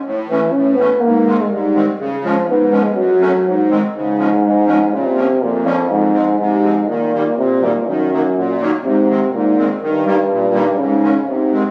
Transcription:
0.05 0.41 A2 medium
0.29 0.53 E3 medium
0.29 0.41 E3 medium
0.29 0.41 A3 medium
0.29 0.41 C#4 medium
0.52 0.90 A2 medium
0.52 0.77 C#4 medium
0.75 1.02 B3 loud
0.80 0.90 E3 medium
0.80 0.90 A3 medium
0.80 0.90 C#4 medium
1.00 1.39 G#2 medium
1.00 1.42 A#3 loud
1.26 1.37 D#3 medium
1.26 1.37 G#3 medium
1.26 1.38 C4 medium
1.41 1.53 G#3 medium
1.51 1.87 G#2 medium
1.51 1.87 G3 medium
1.75 1.86 D#3 medium
1.75 1.86 G#3 medium
1.75 1.86 C4 medium
1.99 2.35 C#3 medium
2.24 2.35 F3 medium
2.24 2.47 F3 medium
2.24 2.35 G#3 medium
2.24 2.35 C#4 medium
2.48 2.84 G#2 medium
2.48 2.84 B3 medium
2.72 2.83 F3 medium
2.72 2.83 G#3 medium
2.72 2.83 C#4 medium
2.83 2.95 G#3 medium
2.95 3.33 F#2 medium
2.95 3.66 F#3 loud
3.20 3.32 F#3 medium
3.20 3.32 A3 medium
3.20 3.32 C#4 medium
3.45 3.82 G#2 medium
3.71 3.81 D#3 medium
3.71 3.82 G#3 medium
3.71 3.81 C4 medium
3.94 4.95 G#2 medium
3.94 4.31 C#3 medium
4.18 4.30 F3 medium
4.18 4.30 G#3 medium
4.18 4.30 C#4 medium
4.43 4.80 G#2 medium
4.67 4.79 F3 medium
4.67 4.79 G#3 medium
4.67 4.79 C#4 medium
4.91 5.28 A#2 medium
4.91 5.06 C#3 medium
5.05 5.44 C3 loud
5.15 5.27 F3 medium
5.15 5.27 A#3 medium
5.15 5.28 C#4 medium
5.41 5.77 F2 medium
5.41 5.68 A#2 medium
5.65 5.90 F2 medium
5.65 5.76 F3 medium
5.65 5.76 A#3 medium
5.65 5.77 C#4 medium
5.89 6.26 F2 medium
5.89 6.35 G#2 loud
6.13 6.25 F3 medium
6.13 6.25 G#3 medium
6.13 6.25 C4 medium
6.39 6.90 G#2 medium
6.39 6.76 C3 medium
6.64 6.74 F3 medium
6.64 6.75 G#3 medium
6.64 6.75 C4 medium
6.88 7.37 A#2 medium
6.88 7.12 D#3 medium
7.13 7.24 D#3 medium
7.13 7.24 G3 medium
7.13 7.24 A#3 medium
7.37 7.74 A#2 medium
7.37 7.66 C3 medium
7.62 7.88 A#2 medium
7.62 7.73 D#3 medium
7.62 7.73 G3 medium
7.62 7.73 A#3 medium
7.87 8.58 F#2 medium
7.87 8.11 D#3 medium
8.12 8.22 D#3 medium
8.12 8.23 F#3 medium
8.12 8.22 A#3 medium
8.36 8.72 A#2 medium
8.60 8.71 D#3 medium
8.60 8.71 F#3 medium
8.60 8.71 A#3 medium
8.85 9.21 G#2 medium
8.85 9.30 C3 medium
9.09 9.20 D#3 medium
9.09 9.20 G#3 medium
9.09 9.20 C4 medium
9.33 9.69 G#2 medium
9.33 9.67 A#2 medium
9.58 9.69 D#3 medium
9.58 9.69 G#3 medium
9.58 9.69 C4 medium
9.82 10.79 G2 medium
9.82 10.05 D#3 medium
10.06 10.17 D#3 medium
10.06 10.17 G3 medium
10.06 10.17 A#3 medium
10.30 10.67 A#2 medium
10.53 10.65 D#3 medium
10.53 10.65 G3 medium
10.53 10.65 A#3 medium
10.77 11.15 G#2 medium
10.77 11.27 C#3 loud
11.03 11.14 D#3 medium
11.03 11.14 G#3 medium
11.03 11.14 C#4 medium
11.26 11.64 G#2 medium
11.26 11.63 C3 medium
11.52 11.63 D#3 medium
11.52 11.63 G#3 soft
11.52 11.63 C4 medium

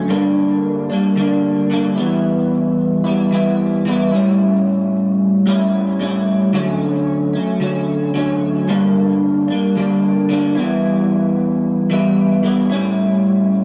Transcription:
0.00 0.11 C#4 medium
0.08 0.90 G2 medium
0.08 0.90 D3 medium
0.08 0.93 G3 medium
0.08 0.90 A#3 medium
0.08 0.88 D4 medium
0.90 1.16 G3 soft
0.90 1.17 A#3 medium
0.90 1.17 D4 medium
1.16 1.69 D3 medium
1.16 1.71 G3 medium
1.16 1.72 A#3 medium
1.16 1.72 D4 medium
1.70 1.97 D3 medium
1.70 1.98 G3 medium
1.70 1.97 A#3 medium
1.70 1.95 D4 medium
1.96 3.07 G3 medium
1.96 3.05 B3 medium
1.96 3.04 E4 medium
2.01 3.31 E3 medium
3.04 3.31 G3 soft
3.04 3.33 B3 medium
3.04 3.32 E4 medium
3.31 3.85 E3 medium
3.31 3.86 G3 medium
3.31 3.87 B3 medium
3.31 3.89 E4 medium
3.85 4.12 E3 medium
3.85 4.13 G3 medium
3.85 4.13 B3 medium
3.85 4.10 E4 medium
4.11 5.46 G3 medium
4.11 5.48 C#4 medium
4.11 5.46 E4 medium
4.17 5.44 A2 medium
5.46 5.98 A2 medium
5.46 6.00 G3 medium
5.46 6.02 C#4 medium
5.46 6.02 E4 medium
5.99 6.54 A2 medium
5.99 6.54 G3 medium
5.99 6.55 C#4 medium
5.99 6.56 E4 medium
6.53 7.36 D3 loud
6.53 7.35 F#3 medium
6.53 7.35 A3 medium
6.53 7.32 C#4 medium
7.33 7.60 F#3 soft
7.33 7.61 A3 soft
7.33 7.61 C#4 medium
7.60 8.14 D3 medium
7.60 8.14 F#3 medium
7.60 8.16 A3 medium
7.60 8.16 C#4 medium
8.14 8.67 D3 medium
8.14 8.69 F#3 medium
8.14 8.69 A3 medium
8.14 8.70 C#4 medium
8.68 9.49 G2 medium
8.68 9.49 D3 medium
8.68 9.51 G3 medium
8.68 9.49 A#3 medium
8.68 9.47 D4 medium
9.48 9.76 G3 medium
9.48 9.77 A#3 medium
9.48 9.76 D4 medium
9.76 10.28 D3 medium
9.76 10.30 G3 medium
9.76 10.30 A#3 medium
9.76 10.31 D4 medium
10.29 10.56 D3 medium
10.29 10.57 G3 medium
10.29 10.57 A#3 medium
10.29 10.55 D4 medium
10.55 11.91 G3 medium
10.55 11.91 B3 medium
10.55 11.93 E4 medium
10.61 11.89 E3 medium
11.90 12.43 E3 medium
11.90 12.44 G3 medium
11.90 12.44 B3 medium
11.90 12.46 E4 medium
12.43 12.70 E3 medium
12.43 12.71 G3 medium
12.43 12.71 B3 medium
12.43 12.68 E4 medium
12.70 13.64 C#4 medium
12.70 13.64 E4 medium
12.74 13.64 A2 medium
12.74 13.64 G3 medium

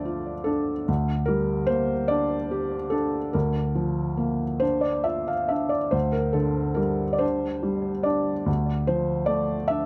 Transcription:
0.00 0.84 D2 soft
0.00 0.90 F3 soft
0.00 0.90 A3 soft
0.00 0.31 D4 soft
0.00 0.91 C5 medium
0.00 0.47 D5 medium
0.00 0.91 E5 medium
0.05 0.71 F4 soft
0.44 0.88 D4 soft
0.44 0.87 A4 medium
0.88 3.30 D2 soft
1.26 1.92 G3 soft
1.26 1.67 A#4 medium
1.67 2.34 A#3 soft
1.67 2.08 C5 medium
2.08 2.76 D4 soft
2.08 2.92 D5 medium
2.51 3.18 G4 soft
2.90 3.34 D4 soft
2.90 3.33 A4 medium
3.33 5.90 D2 soft
3.33 4.61 A#4 soft
3.75 4.44 F3 soft
4.17 4.87 A#3 soft
4.60 5.33 D4 soft
4.60 4.83 C5 medium
4.81 5.05 D5 soft
5.04 5.76 F4 soft
5.04 5.27 E5 medium
5.28 5.50 F5 medium
5.49 5.94 D4 soft
5.49 5.71 E5 soft
5.69 5.92 D5 soft
5.91 8.43 D2 soft
5.91 6.14 C5 medium
6.12 6.35 A#4 medium
6.33 7.04 D3 soft
6.33 6.77 A4 medium
6.74 7.46 G3 soft
6.74 7.13 A#4 medium
7.13 7.21 D5 soft
7.19 7.89 D4 soft
7.19 8.05 C5 medium
7.63 8.30 G3 soft
8.03 8.47 D4 soft
8.03 8.46 D5 medium
8.46 9.86 D2 soft
8.87 9.55 F3 soft
8.87 9.29 C5 medium
9.26 9.86 A3 soft
9.26 9.69 D5 medium
9.68 9.86 D4 soft
9.68 9.86 E5 medium

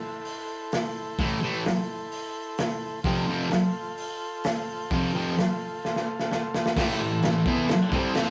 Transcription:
0.00 3.00 E4 medium
0.00 3.00 A4 medium
0.00 3.01 C5 medium
0.25 open hi-hat medium
0.72 snare loud
0.72 open hi-hat medium
1.19 1.38 A2 medium
1.19 1.38 E3 loud
1.19 1.39 A3 loud
1.19 kick loud
1.19 open hi-hat medium
1.43 1.61 A2 medium
1.43 1.61 E3 loud
1.43 1.62 A3 loud
1.65 snare loud
1.65 open hi-hat medium
2.12 open hi-hat medium
2.58 snare loud
2.58 open hi-hat medium
3.03 3.24 F2 medium
3.03 3.24 C3 medium
3.03 3.24 F3 medium
3.03 6.71 F4 medium
3.03 6.72 A4 medium
3.03 6.73 C5 medium
3.03 kick loud
3.03 open hi-hat medium
3.28 3.47 F2 medium
3.28 3.47 C3 loud
3.28 3.48 F3 loud
3.51 snare loud
3.51 open hi-hat medium
3.98 open hi-hat medium
4.44 snare loud
4.44 open hi-hat medium
4.91 5.10 F2 medium
4.91 5.10 C3 loud
4.91 5.10 F3 loud
4.91 kick loud
4.91 open hi-hat medium
5.14 5.33 F2 medium
5.14 5.33 C3 loud
5.14 5.33 F3 loud
5.38 snare loud
5.38 open hi-hat medium
5.85 snare medium
5.96 snare medium
6.20 snare medium
6.32 snare medium
6.54 snare medium
6.66 snare loud
6.75 6.99 A2 medium
6.75 7.00 E3 medium
6.75 7.00 A3 loud
6.75 8.30 E4 medium
6.75 8.30 A4 medium
6.75 8.30 C5 medium
6.75 kick loud
6.75 snare loud
6.75 crash loud
6.75 crash medium
7.01 7.19 A2 medium
7.01 7.19 E3 medium
7.22 7.42 A2 medium
7.22 7.42 E3 medium
7.22 snare loud
7.22 crash medium
7.46 7.69 E3 medium
7.46 7.69 B3 loud
7.46 7.69 E4 loud
7.46 kick loud
7.68 muted distorted electric guitar stroke medium
7.68 snare loud
7.68 crash medium
7.92 8.14 C3 medium
7.92 8.15 G3 loud
7.92 8.14 C4 loud
7.92 kick loud
8.15 8.30 F3 medium
8.15 8.30 C4 loud
8.15 8.30 F4 loud
8.15 snare loud
8.15 crash medium

